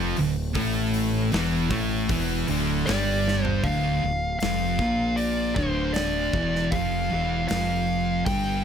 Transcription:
Already playing: fingered electric bass F1, distorted electric guitar F2 F3
0.17 fingered electric bass D1, distorted electric guitar D2, open hi-hat
0.55 fingered electric bass A1, distorted electric guitar A2 A3, kick, open hi-hat
0.94 open hi-hat
1.32 fingered electric bass E1, distorted electric guitar E2 E3, snare, open hi-hat
1.70 fingered electric bass A1, distorted electric guitar A2 A3, kick, open hi-hat
2.09 fingered electric bass E1, distorted electric guitar E2 E3, kick, open hi-hat
2.48 fingered electric bass D1, distorted electric guitar D2 D3, open hi-hat
2.86 fingered electric bass G1, distorted electric guitar G2 G3, lead electric guitar D5, snare, open hi-hat
3.28 snare
3.45 lead electric guitar C5, floor tom
3.64 fingered electric bass D1, distorted electric guitar D2 D3, lead electric guitar F5, kick, open hi-hat
4.03 fingered electric bass D1, distorted electric guitar D2
4.39 fingered electric bass F1, distorted electric guitar F2, lead electric guitar F5, snare, open hi-hat
4.44 distorted electric guitar F3
4.79 fingered electric bass A#1, distorted electric guitar A#2 A#3, kick
5.16 lead electric guitar D5, open hi-hat
5.55 fingered electric bass D1, distorted electric guitar D2 D3, lead electric guitar C5, kick
5.94 lead electric guitar D5, snare, open hi-hat
6.33 fingered electric bass E1, distorted electric guitar E2 E3, kick
6.55 snare
6.71 fingered electric bass F1, distorted electric guitar F2 F3, lead electric guitar F5, kick, open hi-hat
7.11 fingered electric bass E1, distorted electric guitar E2 E3
7.48 fingered electric bass F1, distorted electric guitar F2 F3, lead electric guitar F5, snare, open hi-hat
8.26 fingered electric bass G1, distorted electric guitar G2 G3, lead electric guitar G5, kick, open hi-hat

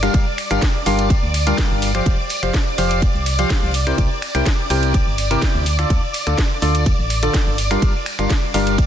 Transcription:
Already playing: analog synth pad D5 D6
0.03 synth stab G3 D4 F4 G4 A#4 F5, finger snap, closed hi-hat, tambourine
0.14 fm bass G1, kick, closed hi-hat, ride, tambourine
0.38 finger snap, open hi-hat, tambourine
0.50 fm bass G1, synth stab G3 D4 F4 G4 A#4 F5, finger snap, closed hi-hat, tambourine
0.62 kick, snare, closed hi-hat, ride
0.86 fm bass G1, synth stab G3 D4 F4 G4 A#4 F5, open hi-hat, tambourine
0.98 closed hi-hat, tambourine
1.10 kick, closed hi-hat, ride, tambourine
1.23 fm bass D2
1.34 open hi-hat, tambourine
1.47 synth stab G3 D4 F4 G4 A#4 F5, closed hi-hat, tambourine
1.58 kick, snare, closed hi-hat, ride
1.71 fm bass G1
1.82 open hi-hat, tambourine
1.94 synth stab F3 G4 C5 F5, finger snap, closed hi-hat, tambourine
2.06 fm bass F1, kick, closed hi-hat, ride
2.29 open hi-hat, tambourine
2.43 fm bass F1, synth stab F3 G4 C5 F5, finger snap, closed hi-hat
2.54 kick, snare, closed hi-hat, ride, tambourine
2.78 fm bass F1, synth stab F3 G4 C5 F5, open hi-hat, tambourine
2.91 closed hi-hat, tambourine
3.02 kick, closed hi-hat, ride
3.15 fm bass C2
3.26 open hi-hat, tambourine
3.39 synth stab F3 G4 C5 F5, closed hi-hat, tambourine
3.50 kick, snare, closed hi-hat, ride
3.63 fm bass C2
3.74 open hi-hat, tambourine
3.87 synth stab C3 E4 G4 A#4 C5 G5, finger snap, closed hi-hat, tambourine
3.98 fm bass C2, kick, closed hi-hat, ride, tambourine
4.22 finger snap, open hi-hat, tambourine
4.34 fm bass C2, synth stab C3 E4 G4 A#4 C5 G5, finger snap, closed hi-hat, tambourine
4.46 kick, snare, closed hi-hat, ride, tambourine
4.70 fm bass C2, synth stab C3 E4 G4 A#4 C5 G5, open hi-hat, tambourine
4.83 closed hi-hat, tambourine
4.94 kick, closed hi-hat, ride, tambourine
5.07 fm bass G1
5.18 open hi-hat, tambourine
5.31 synth stab C3 E4 G4 A#4 C5 G5, closed hi-hat, tambourine
5.42 kick, snare, closed hi-hat, ride, tambourine
5.55 fm bass D2
5.66 open hi-hat, tambourine
5.79 synth stab D3 F4 A4 D5, finger snap, closed hi-hat, tambourine
5.90 fm bass D2, kick, closed hi-hat, ride, tambourine
6.14 open hi-hat, tambourine
6.27 fm bass D2, synth stab D3 F4 A4 D5, finger snap, closed hi-hat
6.38 kick, snare, closed hi-hat, ride
6.62 fm bass D2, synth stab D3 F4 A4 D5, open hi-hat, tambourine
6.75 closed hi-hat, tambourine
6.86 kick, closed hi-hat, ride, tambourine
6.99 fm bass A1
7.10 open hi-hat, tambourine
7.22 synth stab D3 F4 A4 D5, closed hi-hat, tambourine
7.34 kick, snare, closed hi-hat, ride
7.47 fm bass G1
7.58 open hi-hat, tambourine
7.71 synth stab G3 D4 F4 G4 A#4 F5, finger snap, closed hi-hat, tambourine
7.82 fm bass G1, kick, closed hi-hat, ride, tambourine
8.06 finger snap, open hi-hat, tambourine
8.19 fm bass G1, synth stab G3 D4 F4 G4 A#4 F5, finger snap, closed hi-hat, tambourine
8.29 kick, snare, closed hi-hat, ride, tambourine
8.54 fm bass G1, synth stab G3 D4 F4 G4 A#4 F5, open hi-hat, tambourine
8.67 closed hi-hat, tambourine
8.78 kick, closed hi-hat, ride, tambourine

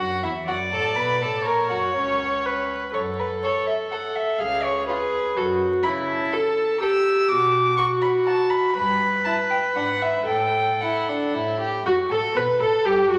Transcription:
Already playing: violin F#4
0.00 cello F#2, violin F#5
0.23 cello E2, violin E4 E5
0.47 cello F#2, violin F#4 F#5, viola D5
0.72 cello A2, violin A4 A5
0.96 cello B2, violin B4 B5
1.20 cello A2, violin A4 A5
1.45 cello A#2, violin A#4 A#5, viola C#5
1.70 cello F#2, violin F#4 F#5
1.94 cello C#2, violin C#4 C#5
2.46 viola B4
2.94 cello F#2, viola A4, violin C#5
3.19 violin B4
3.43 violin A4 C#5
3.67 violin E5
3.91 violin A4 F#5
4.15 violin E5
4.39 cello C#2, viola G#4, violin F5
4.63 violin C#5
4.87 violin F4 B4, viola G#4
5.36 cello F#2, viola F#4, violin A4
5.83 cello C#3, viola E4, violin B5
6.07 violin A5
6.33 violin A4, viola A4
6.81 viola G4, violin A4 E6
7.29 cello B2, viola F#4, violin D6
7.77 viola F#4, violin F#4 C#6
8.02 violin B5
8.26 violin F#4 A5
8.50 violin B5
8.76 cello G2, viola B4, violin B5
9.25 violin E4 A5
9.50 violin G5
9.75 cello G#2, violin D4 F#5
10.02 violin E5
10.27 cello A2, viola A4, violin G5
10.81 violin E4 F#5
11.09 violin D4
11.33 cello A2, violin E4
11.60 violin G4
11.85 cello F#2, violin F#4, viola F#4
12.10 cello A2, violin A4, viola A4
12.35 cello B2, violin B4, viola B4
12.60 cello A2, violin A4, viola A4
12.85 cello G2, viola G4, violin G4
13.10 cello F#2, viola F#4, violin F#4

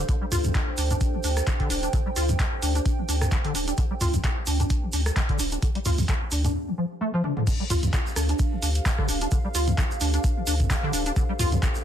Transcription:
Already playing: analog synth pad D4 A4 C5, ambient pad G4 C5 F5
0.09 acid bass D3, analog synth pad G5, kick, closed hi-hat, shaker
0.21 acid bass G3
0.32 sub bass D2, acid bass F4, mid tom, open hi-hat, shaker
0.44 acid bass C3, closed hi-hat, mid tom, shaker
0.54 acid bass D3, kick, clap, closed hi-hat, shaker
0.77 sub bass D2, acid bass D4, open hi-hat, shaker
0.90 acid bass D4, closed hi-hat, mid tom, shaker
1.01 kick, closed hi-hat, shaker
1.14 acid bass D3
1.24 sub bass D2, acid bass D4, open hi-hat, shaker
1.37 cross-stick, closed hi-hat, shaker
1.47 acid bass D3, kick, clap, closed hi-hat, shaker
1.60 acid bass D3, kick, closed hi-hat
1.70 sub bass D1, acid bass D4, open hi-hat, shaker
1.83 acid bass D4, closed hi-hat, shaker
1.93 acid bass D3, kick, closed hi-hat, shaker
2.06 acid bass G3
2.16 sub bass D2, acid bass F4, open hi-hat, shaker
2.29 acid bass C3, closed hi-hat, mid tom, shaker
2.39 acid bass D3, kick, clap, closed hi-hat, shaker
2.62 sub bass D2, acid bass D4, open hi-hat, shaker
2.75 acid bass D4, closed hi-hat, shaker
2.86 kick, closed hi-hat, shaker
2.98 acid bass D3
3.09 sub bass D2, acid bass D4, open hi-hat, shaker
3.21 cross-stick, closed hi-hat, mid tom, shaker
3.31 acid bass D3, kick, clap, closed hi-hat, shaker
3.44 acid bass D3, closed hi-hat
3.55 sub bass D1, acid bass D4, open hi-hat, shaker
3.68 acid bass D4, closed hi-hat, shaker
3.77 acid bass D3, kick, closed hi-hat, shaker
3.91 acid bass G3
4.01 sub bass D2, acid bass F4, mid tom, open hi-hat, shaker
4.14 acid bass C3, closed hi-hat, mid tom, shaker
4.24 acid bass D3, kick, clap, closed hi-hat, shaker
4.46 sub bass D2, acid bass D4, open hi-hat, shaker
4.60 acid bass D4, closed hi-hat, mid tom, shaker
4.70 kick, closed hi-hat, shaker
4.83 acid bass D3
4.93 sub bass D2, acid bass D4, open hi-hat, shaker
5.06 cross-stick, closed hi-hat, shaker
5.16 acid bass D3, kick, clap, closed hi-hat, shaker
5.29 acid bass D3, kick, closed hi-hat
5.39 sub bass D1, acid bass D4, open hi-hat, shaker
5.51 acid bass D4, closed hi-hat, shaker
5.62 acid bass D3, kick, closed hi-hat, shaker
5.75 acid bass G3, closed hi-hat
5.85 sub bass D2, acid bass F4, mid tom, open hi-hat, shaker
5.98 acid bass C3, mid tom, open hi-hat, shaker
6.09 acid bass D3, kick, clap, closed hi-hat, shaker
6.31 sub bass D2, acid bass D4, open hi-hat, shaker
6.44 acid bass D4, closed hi-hat, mid tom, shaker
6.68 acid bass D3
6.78 acid bass F3
7.01 acid bass A3
7.14 acid bass F3
7.24 acid bass D4, high tom
7.37 acid bass D3, mid tom
7.47 acid bass D3, analog synth pad D4 A4 C5 F5, ambient pad G4, kick, closed hi-hat, crash, shaker
7.60 acid bass G3
7.65 ambient pad F5
7.70 sub bass D2, acid bass F4, mid tom, open hi-hat, shaker
7.83 acid bass C3, closed hi-hat, mid tom, shaker
7.93 acid bass D3, kick, clap, closed hi-hat, shaker
8.07 shaker
8.16 sub bass D2, acid bass D4, cross-stick, open hi-hat, shaker
8.29 acid bass D4, closed hi-hat, shaker
8.39 kick, closed hi-hat, shaker
8.52 acid bass D3
8.62 sub bass D2, acid bass D4, open hi-hat, shaker
8.75 closed hi-hat, shaker
8.85 acid bass D3, kick, clap, closed hi-hat, shaker
8.98 acid bass D3, kick, cross-stick
9.09 sub bass D1, acid bass D4, open hi-hat, shaker
9.21 acid bass D4, closed hi-hat, shaker
9.31 acid bass D3, kick, closed hi-hat, shaker
9.45 acid bass G3
9.55 sub bass D2, acid bass F4, open hi-hat, shaker
9.68 acid bass C3, closed hi-hat, mid tom, shaker
9.78 acid bass D3, kick, clap, closed hi-hat, shaker
9.91 shaker
10.01 sub bass D2, acid bass D4, open hi-hat, shaker
10.13 acid bass D4, closed hi-hat, shaker
10.24 kick, closed hi-hat, shaker
10.37 acid bass D3
10.47 sub bass D2, acid bass D4, open hi-hat, shaker
10.60 kick, closed hi-hat, mid tom, shaker
10.70 acid bass D3, kick, clap, closed hi-hat, shaker
10.83 acid bass D3
10.93 sub bass D1, acid bass D4, open hi-hat, shaker
11.06 acid bass D4, closed hi-hat, shaker
11.16 acid bass D3, analog synth pad G5, kick, closed hi-hat, shaker
11.29 acid bass G3
11.39 sub bass D2, acid bass F4, mid tom, open hi-hat, shaker
11.52 acid bass C3, closed hi-hat, mid tom, shaker
11.62 acid bass D3, kick, clap, closed hi-hat, shaker
11.75 shaker

